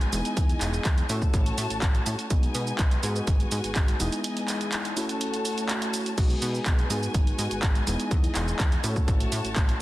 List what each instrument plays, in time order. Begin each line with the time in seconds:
Already playing: string section F#4 B4 G#5
0.01 closed hi-hat, shaker
0.12 analog synth bass E1, string section E3 D#5, tine electric piano G#3 B3 D#4 E4 G#4, open hi-hat, shaker
0.25 closed hi-hat, shaker
0.37 analog synth bass E2, kick, closed hi-hat, shaker
0.49 closed hi-hat, shaker
0.61 analog synth bass E1, clap, open hi-hat, shaker
0.74 shaker
0.85 analog synth bass E2, kick, clap, closed hi-hat, shaker
0.98 closed hi-hat, shaker
1.09 analog synth bass A2, tine electric piano A3 C#4 E4 F#4 A4, string section F#4 C#5 A5, open hi-hat, shaker
1.22 kick, shaker
1.34 analog synth bass A1, kick, closed hi-hat, shaker
1.46 closed hi-hat, shaker
1.58 analog synth bass A2, open hi-hat, shaker
1.70 analog synth bass A1, closed hi-hat, shaker
1.82 analog synth bass A1, kick, clap, closed hi-hat, shaker
1.95 closed hi-hat, shaker
2.06 analog synth bass A2, open hi-hat, shaker
2.19 closed hi-hat, shaker
2.30 analog synth bass B1, tine electric piano G#3 B3 D#4 F#4 G#4, string section D#4 B4 G#5, kick, closed hi-hat, shaker
2.43 closed hi-hat, shaker
2.55 analog synth bass B2, open hi-hat, shaker
2.67 shaker
2.79 analog synth bass B1, kick, clap, closed hi-hat, shaker
2.91 closed hi-hat, shaker
3.03 analog synth bass G#2, tine electric piano G#3 B3 D#4 F#4 G#4, string section F#4 G#5, open hi-hat, shaker
3.16 shaker
3.27 analog synth bass G#1, kick, closed hi-hat, shaker
3.40 closed hi-hat, shaker
3.52 analog synth bass G#2, open hi-hat, shaker
3.64 analog synth bass G#1, closed hi-hat, shaker
3.76 analog synth bass G#1, kick, clap, closed hi-hat, shaker
3.88 closed hi-hat, shaker
3.99 analog synth bass E1, string section E3 D#5 G#5, tine electric piano G#3 B3 D#4 E4 G#4, open hi-hat, shaker
4.12 closed hi-hat, shaker
4.24 closed hi-hat, shaker
4.37 closed hi-hat, shaker
4.48 clap, open hi-hat, shaker
4.61 closed hi-hat, shaker
4.72 clap, closed hi-hat, shaker
4.85 closed hi-hat, shaker
4.96 tine electric piano A3 C#4 E4 F#4 A4, string section F#4 C#5 A5, open hi-hat, shaker
5.09 closed hi-hat, shaker
5.21 closed hi-hat, shaker
5.34 closed hi-hat, shaker
5.45 open hi-hat, shaker
5.58 closed hi-hat, shaker
5.69 clap, closed hi-hat, shaker
5.82 closed hi-hat, shaker
5.94 open hi-hat, shaker
6.06 closed hi-hat, shaker
6.17 analog synth bass B1, tine electric piano G#3 B3 D#4 F#4 G#4, string section D#4 B4 G#5, kick, closed hi-hat, crash, shaker
6.30 closed hi-hat, shaker
6.42 analog synth bass B2, open hi-hat, shaker
6.55 shaker
6.66 analog synth bass B1, kick, clap, closed hi-hat, shaker
6.79 closed hi-hat, shaker
6.90 analog synth bass G#2, tine electric piano G#3 B3 D#4 F#4 G#4, string section F#4, open hi-hat, shaker
7.03 shaker
7.14 analog synth bass G#1, kick, closed hi-hat, shaker
7.27 closed hi-hat, shaker
7.39 analog synth bass G#2, open hi-hat, shaker
7.51 analog synth bass G#1, closed hi-hat, shaker
7.63 analog synth bass G#1, kick, clap, closed hi-hat, shaker
7.75 closed hi-hat, shaker
7.86 analog synth bass E1, string section E3 D#5, tine electric piano G#3 B3 D#4 E4 G#4, open hi-hat, shaker
8.00 closed hi-hat, shaker
8.11 analog synth bass E2, kick, closed hi-hat, shaker
8.24 closed hi-hat, shaker
8.35 analog synth bass E1, clap, open hi-hat, shaker
8.48 shaker
8.59 analog synth bass E2, kick, clap, closed hi-hat, shaker
8.72 closed hi-hat, shaker
8.83 analog synth bass A2, tine electric piano A3 C#4 E4 F#4 A4, string section F#4 C#5 A5, open hi-hat, shaker
8.96 kick, shaker
9.08 analog synth bass A1, kick, closed hi-hat, shaker
9.20 closed hi-hat, shaker
9.32 analog synth bass A2, open hi-hat, shaker
9.45 analog synth bass A1, closed hi-hat, shaker
9.56 analog synth bass A1, kick, clap, closed hi-hat, shaker
9.69 closed hi-hat, shaker